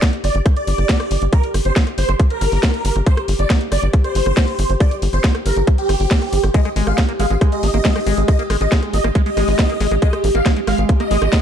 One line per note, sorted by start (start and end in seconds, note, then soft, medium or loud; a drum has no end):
0.00 6.54 G3 medium
0.00 6.54 G4 medium
0.00 11.42 G4 medium
0.00 3.04 D5 medium
0.00 kick loud
0.00 snare loud
0.00 closed hi-hat loud
0.13 closed hi-hat soft
0.20 0.30 G1 loud
0.20 0.38 D5 medium
0.20 6.54 D6 medium
0.20 cross-stick soft
0.20 open hi-hat loud
0.35 0.41 G1 medium
0.35 closed hi-hat soft
0.46 kick loud
0.46 cross-stick medium
0.46 closed hi-hat loud
0.56 1.24 D5 loud
0.56 closed hi-hat soft
0.67 0.74 G1 medium
0.67 open hi-hat loud
0.78 0.85 G1 medium
0.78 cross-stick soft
0.78 closed hi-hat soft
0.89 kick loud
0.89 snare loud
0.89 closed hi-hat medium
1.00 cross-stick medium
1.00 closed hi-hat soft
1.11 1.17 G1 loud
1.11 open hi-hat loud
1.22 1.28 G1 medium
1.22 closed hi-hat soft
1.33 1.47 A#4 loud
1.33 kick loud
1.33 cross-stick soft
1.33 closed hi-hat medium
1.43 closed hi-hat soft
1.54 1.61 G1 medium
1.54 cross-stick medium
1.54 open hi-hat loud
1.65 1.72 G1 medium
1.65 1.79 C5 medium
1.65 closed hi-hat soft
1.76 kick loud
1.76 snare loud
1.76 closed hi-hat medium
1.87 cross-stick soft
1.87 closed hi-hat soft
1.98 2.04 G1 medium
1.98 2.12 C5 loud
1.98 open hi-hat loud
2.09 2.15 G1 medium
2.09 cross-stick medium
2.09 closed hi-hat soft
2.20 kick loud
2.20 closed hi-hat medium
2.30 2.98 A#4 loud
2.30 closed hi-hat soft
2.41 2.48 G1 medium
2.41 cross-stick soft
2.41 open hi-hat loud
2.52 2.59 G1 medium
2.52 open hi-hat medium
2.63 kick loud
2.63 cross-stick medium
2.63 snare loud
2.63 closed hi-hat medium
2.74 closed hi-hat soft
2.85 2.91 G1 medium
2.85 open hi-hat loud
2.91 8.12 C5 medium
2.96 3.02 G1 medium
2.96 cross-stick soft
2.96 closed hi-hat soft
3.06 3.21 C5 loud
3.06 kick loud
3.06 closed hi-hat medium
3.17 cross-stick medium
3.17 closed hi-hat soft
3.28 3.35 G1 medium
3.28 open hi-hat loud
3.39 3.46 G1 medium
3.39 3.53 D5 medium
3.39 closed hi-hat soft
3.50 kick loud
3.50 cross-stick soft
3.50 snare loud
3.50 closed hi-hat medium
3.61 closed hi-hat soft
3.72 3.78 G1 medium
3.72 3.86 D5 loud
3.72 cross-stick medium
3.72 open hi-hat loud
3.83 3.89 G1 medium
3.83 closed hi-hat soft
3.93 kick loud
3.93 closed hi-hat medium
4.04 4.72 C5 loud
4.04 cross-stick soft
4.04 closed hi-hat soft
4.15 4.22 G1 medium
4.15 open hi-hat loud
4.26 4.33 G1 medium
4.26 cross-stick medium
4.26 closed hi-hat soft
4.37 kick loud
4.37 snare loud
4.37 closed hi-hat medium
4.48 closed hi-hat soft
4.59 4.65 G1 loud
4.59 cross-stick soft
4.59 open hi-hat loud
4.70 4.76 G1 medium
4.70 closed hi-hat soft
4.80 4.95 D5 loud
4.80 kick loud
4.80 cross-stick medium
4.80 closed hi-hat medium
4.91 closed hi-hat soft
5.02 5.09 G1 medium
5.02 open hi-hat loud
5.13 5.20 G1 medium
5.13 5.27 C5 loud
5.13 cross-stick soft
5.13 closed hi-hat soft
5.24 kick loud
5.24 snare loud
5.24 closed hi-hat medium
5.35 cross-stick medium
5.35 closed hi-hat soft
5.46 5.52 G1 loud
5.46 5.60 A#4 loud
5.46 open hi-hat loud
5.57 5.63 G1 medium
5.57 closed hi-hat soft
5.67 kick loud
5.67 cross-stick soft
5.67 closed hi-hat medium
5.78 6.46 G4 loud
5.78 closed hi-hat soft
5.89 5.96 G1 loud
5.89 cross-stick medium
5.89 open hi-hat loud
6.00 6.07 G1 medium
6.00 open hi-hat medium
6.11 kick loud
6.11 snare loud
6.11 closed hi-hat medium
6.22 cross-stick soft
6.22 closed hi-hat soft
6.33 6.39 G1 medium
6.33 open hi-hat loud
6.43 6.50 G1 medium
6.43 cross-stick medium
6.43 closed hi-hat soft
6.54 11.42 G#3 medium
6.54 6.61 G#3 loud
6.54 6.69 D#5 loud
6.54 kick loud
6.54 closed hi-hat medium
6.65 6.69 G#3 medium
6.65 10.29 D#6 medium
6.65 cross-stick soft
6.65 closed hi-hat soft
6.76 6.83 G#1 medium
6.76 6.99 G#3 medium
6.76 open hi-hat loud
6.85 6.94 G#1 medium
6.85 11.42 D#5 medium
6.85 7.01 F5 loud
6.85 cross-stick medium
6.85 closed hi-hat soft
6.98 7.02 A#3 loud
6.98 kick loud
6.98 snare loud
6.98 closed hi-hat medium
7.09 7.13 A#3 medium
7.09 closed hi-hat soft
7.20 7.26 G#1 medium
7.20 7.26 G#3 loud
7.20 7.34 F5 loud
7.20 cross-stick soft
7.20 open hi-hat loud
7.30 7.37 G#1 medium
7.30 7.35 G#3 medium
7.30 closed hi-hat soft
7.41 7.65 G#3 medium
7.41 kick loud
7.41 cross-stick medium
7.41 closed hi-hat medium
7.52 8.20 D#5 loud
7.52 closed hi-hat soft
7.63 7.70 G#1 medium
7.63 7.67 A#3 loud
7.63 open hi-hat loud
7.74 7.80 G#1 medium
7.74 7.78 A#3 medium
7.74 cross-stick soft
7.74 closed hi-hat soft
7.85 7.92 G#3 loud
7.85 kick loud
7.85 snare loud
7.85 closed hi-hat medium
7.96 8.00 G#3 medium
7.96 cross-stick medium
7.96 closed hi-hat soft
8.07 8.13 G#1 loud
8.07 8.30 G#3 medium
8.07 open hi-hat loud
8.17 8.24 G#1 medium
8.17 closed hi-hat soft
8.28 8.32 A#3 loud
8.28 8.42 D#5 loud
8.28 kick loud
8.28 cross-stick soft
8.28 closed hi-hat medium
8.39 8.43 A#3 medium
8.39 closed hi-hat soft
8.50 8.57 G#1 medium
8.50 8.57 G#3 loud
8.50 cross-stick medium
8.50 open hi-hat loud
8.61 8.67 G#1 medium
8.61 8.65 G#3 medium
8.61 8.75 D#5 loud
8.61 closed hi-hat soft
8.72 8.95 G#3 medium
8.72 kick loud
8.72 snare loud
8.72 closed hi-hat medium
8.83 cross-stick soft
8.83 closed hi-hat soft
8.93 9.00 G#1 loud
8.93 8.98 A#3 loud
8.93 9.08 D#5 loud
8.93 open hi-hat loud
9.04 9.11 G#1 medium
9.04 9.08 A#3 medium
9.04 cross-stick medium
9.04 closed hi-hat soft
9.15 9.22 G#3 loud
9.15 kick loud
9.15 closed hi-hat medium
9.26 9.30 G#3 medium
9.26 9.93 D#5 medium
9.26 closed hi-hat soft
9.37 9.44 G#1 medium
9.37 9.60 G#3 medium
9.37 cross-stick soft
9.37 open hi-hat loud
9.48 9.54 G#1 medium
9.48 open hi-hat medium
9.59 9.63 A#3 loud
9.59 kick loud
9.59 cross-stick medium
9.59 snare loud
9.59 closed hi-hat medium
9.70 9.74 A#3 medium
9.70 closed hi-hat soft
9.80 9.87 G#1 medium
9.80 9.87 G#3 loud
9.80 open hi-hat loud
9.91 9.98 G#1 medium
9.91 9.95 G#3 medium
9.91 cross-stick soft
9.91 closed hi-hat soft
10.02 10.25 G#3 medium
10.02 10.16 D#5 loud
10.02 kick loud
10.02 closed hi-hat medium
10.13 11.42 D6 medium
10.13 cross-stick medium
10.13 closed hi-hat soft
10.24 10.30 G#1 medium
10.24 10.28 A#3 loud
10.24 open hi-hat loud
10.35 10.41 G#1 medium
10.35 10.39 A#3 medium
10.35 10.49 F5 medium
10.35 closed hi-hat soft
10.46 10.52 G#3 loud
10.46 kick loud
10.46 cross-stick soft
10.46 snare loud
10.46 closed hi-hat loud
10.57 10.61 G#3 medium
10.57 closed hi-hat soft
10.67 10.74 G#1 medium
10.67 10.91 G#3 medium
10.67 10.82 F5 loud
10.67 cross-stick medium
10.67 open hi-hat loud
10.78 10.85 G#1 medium
10.78 closed hi-hat soft
10.89 10.93 A#3 loud
10.89 kick loud
10.89 closed hi-hat loud
11.00 11.04 A#3 medium
11.00 11.42 D#5 loud
11.00 cross-stick soft
11.00 closed hi-hat soft
11.11 11.17 G#1 loud
11.11 11.18 G#3 loud
11.11 open hi-hat medium
11.22 11.28 G#1 medium
11.22 11.26 G#3 medium
11.22 cross-stick medium
11.22 closed hi-hat soft
11.33 11.42 G#3 medium
11.33 kick loud
11.33 snare loud
11.33 closed hi-hat medium